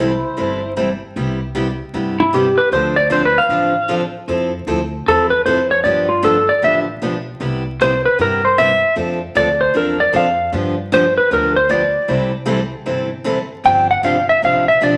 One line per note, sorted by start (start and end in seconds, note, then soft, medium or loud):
0.00 0.22 C2 medium
0.00 0.11 C3 medium
0.00 0.11 E3 medium
0.00 0.11 G3 medium
0.00 0.11 C4 medium
0.00 0.73 E4 medium
0.00 0.11 E4 medium
0.00 0.11 A4 medium
0.00 0.72 C5 medium
0.37 1.01 G1 medium
0.37 0.59 C3 medium
0.37 0.59 E3 medium
0.37 0.59 G3 medium
0.37 0.60 C4 medium
0.37 0.59 E4 medium
0.37 0.60 A4 medium
0.76 0.88 C3 medium
0.76 0.88 E3 medium
0.76 0.88 G3 medium
0.76 0.88 C4 medium
0.76 0.89 E4 medium
0.76 0.89 A4 medium
1.16 1.79 C2 medium
1.16 1.38 C3 medium
1.16 1.38 G3 medium
1.16 1.38 B3 medium
1.16 1.38 E4 medium
1.16 1.38 G4 medium
1.55 1.67 C3 medium
1.55 1.67 G3 medium
1.55 1.67 B3 medium
1.55 1.67 E4 medium
1.55 1.67 G4 medium
1.94 2.56 G2 medium
1.94 2.16 C3 medium
1.94 2.16 G3 medium
1.94 2.16 B3 medium
1.94 2.16 E4 medium
1.94 2.16 G4 medium
2.20 2.33 E4 medium
2.33 2.45 C3 medium
2.33 2.45 G3 medium
2.33 2.45 B3 medium
2.33 2.45 E4 medium
2.33 2.58 G4 medium
2.33 2.45 G4 medium
2.58 2.72 B4 medium
2.71 3.34 D2 medium
2.71 2.94 D3 medium
2.71 2.94 F3 medium
2.71 2.94 C4 medium
2.71 2.94 D4 medium
2.71 2.95 A4 medium
2.71 2.97 C5 medium
2.96 3.11 D5 loud
3.10 3.22 D3 medium
3.10 3.22 F3 medium
3.10 3.23 C4 medium
3.10 3.22 D4 medium
3.10 3.23 A4 medium
3.10 3.25 C5 medium
3.25 3.38 B4 medium
3.38 3.94 F5 medium
3.49 4.12 A1 medium
3.49 3.72 D3 medium
3.49 3.72 F3 medium
3.49 3.72 C4 medium
3.49 3.72 D4 medium
3.49 3.72 A4 medium
3.88 4.00 D3 medium
3.88 4.01 F3 medium
3.88 4.01 C4 medium
3.88 4.01 D4 medium
3.88 4.01 A4 medium
4.28 4.59 F2 loud
4.28 4.50 F3 medium
4.28 4.50 C4 medium
4.28 4.50 E4 medium
4.28 4.51 A4 medium
4.67 5.00 D2 medium
4.67 4.79 F3 medium
4.67 4.79 C4 medium
4.67 4.79 E4 medium
4.67 4.79 A4 medium
5.06 5.40 E2 medium
5.06 5.29 F3 medium
5.06 5.29 C4 medium
5.06 5.29 E4 medium
5.06 5.29 A4 medium
5.06 5.30 A4 medium
5.30 5.45 B4 medium
5.45 5.79 F2 medium
5.45 5.57 F3 medium
5.45 5.57 C4 medium
5.45 5.58 E4 medium
5.45 5.58 A4 medium
5.45 5.70 C5 medium
5.71 5.83 C#5 medium
5.84 6.47 G2 medium
5.84 6.06 D3 medium
5.84 6.06 F3 medium
5.84 6.07 B3 medium
5.84 6.07 D4 medium
5.84 6.07 G4 medium
5.84 6.08 D5 medium
6.09 6.23 F4 medium
6.22 6.35 D3 medium
6.22 6.35 F3 medium
6.22 6.35 B3 medium
6.22 6.35 D4 medium
6.22 6.35 G4 medium
6.22 6.48 A4 medium
6.49 6.62 D5 medium
6.62 6.96 A1 medium
6.62 6.84 D3 medium
6.62 6.84 F3 medium
6.62 6.85 B3 medium
6.62 6.85 D4 medium
6.62 6.84 G4 medium
6.62 6.79 E5 medium
7.02 7.35 B1 medium
7.02 7.13 D3 medium
7.02 7.13 F3 medium
7.02 7.14 B3 medium
7.02 7.14 D4 medium
7.02 7.14 G4 medium
7.40 8.03 C2 medium
7.40 7.62 C3 medium
7.40 7.62 G3 medium
7.40 7.62 B3 medium
7.40 7.63 E4 medium
7.40 7.63 G4 medium
7.81 7.92 C3 medium
7.81 7.92 G3 medium
7.81 7.92 B3 medium
7.81 7.92 E4 medium
7.81 7.92 G4 medium
7.81 8.05 C5 medium
8.05 8.19 B4 medium
8.18 8.81 G2 medium
8.18 8.40 C3 medium
8.18 8.40 G3 medium
8.18 8.40 B3 medium
8.18 8.41 E4 medium
8.18 8.41 G4 medium
8.18 8.44 A#4 medium
8.45 8.58 C5 medium
8.58 8.69 C3 medium
8.58 8.69 G3 medium
8.58 8.69 B3 medium
8.58 8.70 E4 medium
8.58 8.70 G4 medium
8.58 8.94 E5 medium
8.96 9.28 F2 medium
8.96 9.18 F3 medium
8.96 9.18 C4 medium
8.96 9.18 D4 medium
8.96 9.18 A4 medium
9.35 9.68 D2 medium
9.35 9.47 F3 medium
9.35 9.47 C4 medium
9.35 9.47 D4 medium
9.35 9.47 A4 medium
9.35 9.60 D5 medium
9.61 9.74 C5 medium
9.74 10.08 E2 medium
9.74 9.96 F3 medium
9.74 9.96 C4 medium
9.74 9.96 D4 medium
9.74 9.96 A4 medium
9.74 10.00 A#4 medium
10.00 10.14 D5 medium
10.13 10.47 F2 medium
10.13 10.25 F3 medium
10.13 10.25 C4 medium
10.13 10.25 D4 medium
10.13 10.25 A4 medium
10.13 10.51 F5 medium
10.52 11.15 G2 loud
10.52 10.74 D3 medium
10.52 10.74 F3 medium
10.52 10.74 B3 medium
10.52 10.75 D4 medium
10.52 10.75 G4 medium
10.92 11.03 D3 medium
10.92 11.03 F3 medium
10.92 11.03 B3 medium
10.92 11.03 D4 medium
10.92 11.04 G4 medium
10.92 11.17 C5 medium
11.17 11.31 B4 medium
11.31 11.93 D2 medium
11.31 11.53 D3 medium
11.31 11.53 F3 medium
11.31 11.53 B3 medium
11.31 11.53 D4 medium
11.31 11.53 G4 medium
11.31 11.56 A#4 medium
11.56 11.70 C5 medium
11.69 11.81 D3 medium
11.69 11.81 F3 medium
11.69 11.81 B3 medium
11.69 11.81 D4 medium
11.69 11.81 G4 medium
11.69 12.09 D5 medium
12.08 12.71 C2 medium
12.08 12.30 C3 medium
12.08 12.30 E3 medium
12.08 12.30 G3 medium
12.08 12.30 C4 medium
12.08 12.31 E4 medium
12.08 12.30 A4 medium
12.46 12.58 C3 medium
12.46 12.59 E3 medium
12.46 12.58 G3 medium
12.46 12.58 C4 medium
12.46 12.59 E4 medium
12.46 12.59 A4 medium
12.86 13.49 G1 medium
12.86 13.08 C3 medium
12.86 13.08 E3 medium
12.86 13.08 G3 medium
12.86 13.08 C4 medium
12.86 13.08 E4 medium
12.86 13.08 A4 medium
13.24 13.37 C3 medium
13.24 13.37 E3 medium
13.24 13.37 G3 medium
13.24 13.37 C4 medium
13.24 13.37 E4 medium
13.24 13.37 A4 medium
13.64 13.96 G1 loud
13.64 13.86 C3 medium
13.64 13.86 F3 medium
13.64 13.86 C4 medium
13.64 13.87 D4 medium
13.64 13.86 G4 medium
13.64 13.89 G5 medium
13.91 14.04 F#5 medium
14.03 14.37 G1 medium
14.03 14.15 C3 medium
14.03 14.15 F3 medium
14.03 14.15 C4 medium
14.03 14.16 D4 medium
14.03 14.16 G4 medium
14.03 14.28 F5 medium
14.29 14.43 E5 medium
14.42 14.76 A1 medium
14.42 14.64 C3 medium
14.42 14.65 F3 medium
14.42 14.65 C4 medium
14.42 14.65 D4 medium
14.42 14.65 G4 medium
14.42 14.68 F5 loud
14.68 14.82 E5 medium
14.81 14.97 B1 medium
14.81 14.93 C3 medium
14.81 14.93 F3 medium
14.81 14.94 C4 medium
14.81 14.93 D4 medium
14.81 14.94 G4 medium
14.81 14.97 D5 medium